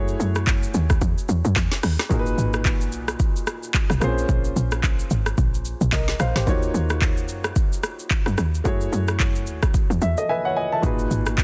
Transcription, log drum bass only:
Already playing: F#2
0.20 F#2
0.74 D#2
1.02 E2
1.29 E2
1.45 F#2
1.56 E2
1.83 D#2
2.11 G#1
2.38 G#1
2.93 B1
3.90 B1
4.02 A#1
4.29 A#1
4.56 A#1
5.11 G#1
5.38 A#1
5.81 A#1
5.92 B1
6.20 A#1
6.36 G#1
6.47 D#2
6.74 D#2
7.29 F#2
8.27 F#2
8.38 D#2
8.65 F#2
8.93 F#2
9.47 D#2
9.90 E2
10.02 E2
10.83 G#1
11.11 G#1

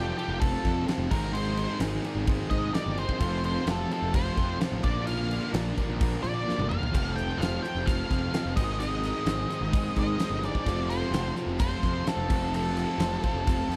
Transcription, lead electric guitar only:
Already playing: G4
0.18 G4
0.40 A4
1.11 A#4
1.33 C5
2.50 D#5
2.74 D5
2.99 C5
3.45 C5
3.71 A4
3.93 A4
4.15 C5
4.84 D5
5.07 F5
6.23 D5
6.69 F5
7.16 G5
7.38 F5
7.63 G5
7.86 F5
8.56 D#5
8.80 D#5
9.99 D#5
10.45 D5
10.90 C5
11.60 C5
12.09 A4
12.55 A4

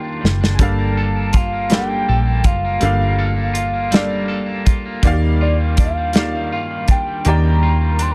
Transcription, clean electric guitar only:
Already playing: D#3 G3 F4
0.03 D4
0.21 G3
0.41 D4
0.59 G3
0.78 A#3
0.97 A4
1.16 A#3
1.33 F4
1.53 A#3
1.71 G3
1.89 A#3
2.09 A4
2.26 A#3
2.45 F4
2.65 A#3
2.82 G3
3.01 A#3
3.19 A4
3.36 A#3
3.54 F4
3.73 A#3
3.91 G3
4.10 A#3
4.28 A4
4.46 A#3
4.65 F4
4.86 A#3
5.03 D#3
5.22 G3
5.41 F4
5.60 G3
5.77 D4
5.97 G3
6.15 D#3
6.35 G3
6.52 F4
6.70 G3
6.88 D4
7.07 G3
7.25 D#3
7.44 G3
7.63 F4
7.81 G3
7.99 D4

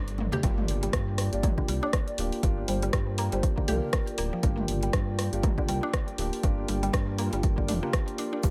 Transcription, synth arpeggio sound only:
0.33 G4
0.43 G3
0.83 G3
1.44 A#3
1.58 D3
1.69 G3
1.83 D4
2.68 G3
2.83 G3
2.94 G3
3.18 A#3
3.33 G3
3.58 D3
3.68 G4
4.18 A#3
4.33 F3
4.43 G3
4.83 G3
5.43 A#3
5.58 D3
5.69 G3
5.83 D4
6.69 G3
6.83 G3
6.93 G3
7.19 A#3
7.33 G3
7.58 D3
7.68 D4
7.83 A#3
8.19 D4
8.33 D4
8.44 G3

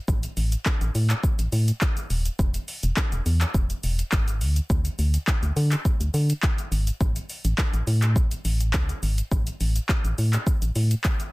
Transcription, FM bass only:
0.08 A1
0.37 A1
0.81 A1
0.95 A2
1.39 A1
1.52 A2
2.10 D#1
2.39 E1
2.83 E1
3.12 E1
3.26 E2
3.54 E1
3.84 E1
4.13 G#1
4.41 D2
4.70 D2
4.99 D2
5.43 D2
5.56 D3
6.00 D2
6.14 D3
6.72 G#1
7.01 A1
7.45 A1
7.74 A1
7.87 A2
8.16 A1
8.45 A1
8.74 C#2
9.03 G#1
9.32 A1
9.61 A1
10.05 A1
10.18 A2
10.62 A1
10.76 A2

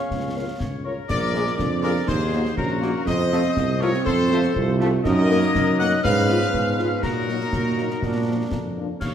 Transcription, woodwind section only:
Already playing: F5
0.36 F5
0.60 C#5
0.85 A#4
1.11 A#4
1.83 A#4
2.08 G#4
2.57 F#4
3.07 C5
3.82 A#4
4.06 A4
5.04 A#4
5.80 D#5
6.04 B4
7.02 F#4
9.01 C#5

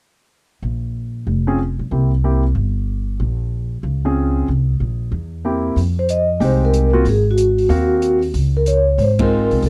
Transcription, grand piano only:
1.47 C4 C#4 F4 G#4
1.91 A#3 C4 E4 G4
2.24 A#3 C4 E4 G4
4.05 C4 C#4 F4 G#4
5.45 A#3 C4 E4 G4
6.40 G#3 C4 D#4 G4
6.93 A#3 C4 F4 F#4
7.69 A#3 C4 F#4 F5
9.19 G#3 C4 D#4 F4

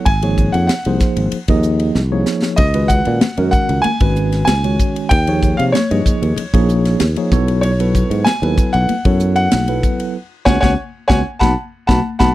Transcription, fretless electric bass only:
0.06 G#1
0.54 F2
0.86 C2
1.01 muted fretless electric bass stroke
1.17 G#1
1.33 muted fretless electric bass stroke
1.48 D#2
1.95 C2
2.59 C#2
3.07 A#2
3.38 F#2
3.53 muted fretless electric bass stroke
3.69 C#2
3.85 muted fretless electric bass stroke
4.01 G#1
4.48 C#2
5.11 D#2
5.59 C3
5.91 G2
6.22 D#2
6.38 muted fretless electric bass stroke
6.54 A#1
7.01 D#2
7.32 B1
8.10 G#2
8.42 D#2
8.58 muted fretless electric bass stroke
8.75 B1
8.90 muted fretless electric bass stroke
9.05 F#2
9.53 B1
10.47 C#2
10.63 C#2
11.10 C#2
11.42 B1
11.89 B1
12.20 B1

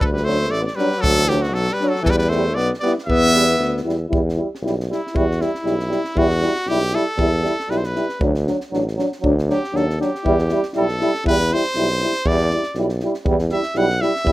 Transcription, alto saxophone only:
0.10 G3
0.23 A3
0.49 A3
0.62 B3
0.71 G3
0.98 F#3
1.24 E3
1.38 D3
1.49 F#3
1.70 G3
1.85 F#3
2.02 E3
2.10 G3
2.16 G3
2.29 A3
2.57 B3
2.83 B3
3.09 B3

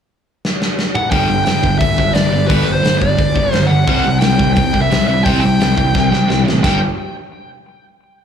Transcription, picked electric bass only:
1.12 G1
1.29 G1
1.46 G1
1.63 G1
1.81 G1
2.15 G1
2.33 G1
2.50 G1
2.68 G1
2.86 G1
3.02 G1
3.19 G1
3.36 G1
3.54 G1
3.71 G1
3.87 C2
4.07 C2
4.23 C2
4.40 C2
4.57 C2
4.92 C2
5.08 C2
5.26 C2
5.44 C2
5.62 C2
5.78 C2
5.95 C2
6.13 C2
6.29 C2
6.47 A1
6.64 G1

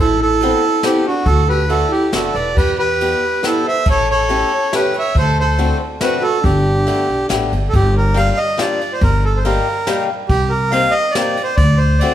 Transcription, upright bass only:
Already playing: A1
1.26 D2
2.12 F#1
2.34 E1
2.57 E2
3.86 A1
5.15 D2
6.44 G1
7.09 B1
7.30 A1
7.52 G1
7.73 G1
9.01 G1
10.30 C2
11.58 D2

